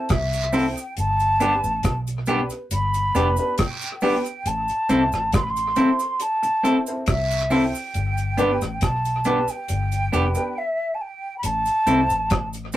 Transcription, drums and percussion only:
0.09 kick loud
0.09 cross-stick loud
0.09 closed hi-hat medium
0.09 cabasa medium
0.09 long guiro medium
0.33 closed hi-hat medium
0.33 cabasa soft
0.53 open hi-hat medium
0.53 cabasa soft
0.76 closed hi-hat soft
0.76 cabasa medium
0.97 closed hi-hat medium
0.97 cabasa medium
1.20 closed hi-hat soft
1.20 cabasa soft
1.40 closed hi-hat medium
1.40 cabasa medium
1.64 cabasa medium
1.83 kick loud
1.83 cross-stick loud
1.83 closed hi-hat medium
1.83 cabasa medium
2.07 closed hi-hat medium
2.07 cabasa medium
2.26 closed hi-hat medium
2.26 cabasa medium
2.50 closed hi-hat soft
2.50 cabasa medium
2.71 closed hi-hat medium
2.71 cabasa medium
2.94 closed hi-hat medium
2.94 cabasa soft
3.15 closed hi-hat medium
3.15 cabasa medium
3.37 cabasa medium
3.58 kick loud
3.58 cross-stick loud
3.58 closed hi-hat medium
3.58 cabasa medium
3.58 long guiro medium
3.81 closed hi-hat medium
3.81 cabasa soft
4.01 open hi-hat medium
4.01 cabasa soft
4.25 closed hi-hat soft
4.25 cabasa medium
4.46 closed hi-hat medium
4.46 cabasa medium
4.68 closed hi-hat soft
4.68 cabasa soft
4.89 closed hi-hat medium
4.89 cabasa medium
5.12 cross-stick medium
5.12 cabasa medium
5.32 kick loud
5.32 cross-stick loud
5.32 closed hi-hat medium
5.32 cabasa medium
5.56 closed hi-hat medium
5.56 cabasa medium
5.76 closed hi-hat medium
5.76 cabasa medium
5.99 cabasa medium
6.20 closed hi-hat medium
6.20 cabasa medium
6.43 closed hi-hat medium
6.43 cabasa soft
6.65 closed hi-hat medium
6.65 cabasa medium
6.86 cabasa medium
7.06 kick loud
7.06 cross-stick loud
7.06 closed hi-hat medium
7.06 cabasa medium
7.06 long guiro medium
7.31 closed hi-hat medium
7.31 cabasa soft
7.50 open hi-hat medium
7.50 cabasa soft
7.75 cabasa medium
7.94 closed hi-hat medium
7.94 cabasa medium
8.17 closed hi-hat soft
8.17 cabasa soft
8.38 closed hi-hat medium
8.38 cabasa medium
8.61 cross-stick medium
8.61 cabasa medium
8.81 kick loud
8.81 cross-stick loud
8.81 closed hi-hat medium
8.81 cabasa medium
9.05 closed hi-hat medium
9.05 cabasa medium
9.24 closed hi-hat medium
9.24 cabasa soft
9.48 cabasa medium
9.68 closed hi-hat medium
9.68 cabasa medium
9.92 closed hi-hat medium
9.92 cabasa soft
10.13 closed hi-hat medium
10.13 cabasa soft
10.35 cabasa medium
11.43 closed hi-hat medium
11.43 cabasa medium
11.65 closed hi-hat soft
11.65 cabasa soft
11.87 closed hi-hat medium
11.87 cabasa medium
12.10 cabasa medium
12.30 kick loud
12.30 cross-stick loud
12.30 closed hi-hat loud
12.30 cabasa medium
12.53 closed hi-hat medium
12.53 cabasa medium
12.72 cabasa medium

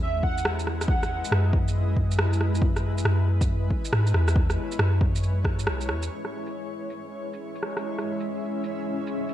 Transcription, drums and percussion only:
0.23 kick medium
0.38 shaker soft
0.45 cross-stick loud
0.59 shaker soft
0.67 cross-stick medium
0.81 cross-stick medium
0.81 shaker medium
0.88 kick loud
1.03 cross-stick medium
1.03 shaker soft
1.25 shaker medium
1.32 cross-stick loud
1.53 kick loud
1.68 shaker soft
1.97 kick medium
2.11 shaker medium
2.19 cross-stick loud
2.33 shaker soft
2.41 cross-stick medium
2.55 shaker medium
2.62 kick loud
2.76 cross-stick medium
2.76 shaker soft
2.98 shaker medium
3.05 cross-stick medium
3.41 kick loud
3.41 shaker medium
3.71 kick medium
3.85 shaker medium
3.93 cross-stick medium
4.07 shaker soft
4.14 cross-stick medium
4.28 cross-stick medium
4.28 shaker medium
4.36 kick loud
4.50 cross-stick medium
4.50 shaker soft
4.72 shaker medium
4.79 cross-stick loud
5.01 kick loud
5.15 shaker medium
5.23 shaker soft
5.45 kick medium
5.45 cross-stick medium
5.59 shaker medium
5.67 cross-stick medium
5.81 shaker soft
5.89 cross-stick medium
6.03 shaker medium
6.25 cross-stick medium
6.25 shaker soft
6.46 shaker soft
6.90 shaker soft
7.33 shaker medium
7.55 shaker soft
7.63 cross-stick medium
7.77 cross-stick medium
7.77 shaker soft
7.99 cross-stick soft
7.99 shaker soft
8.20 shaker medium
8.64 shaker medium
9.07 shaker medium
9.29 shaker soft

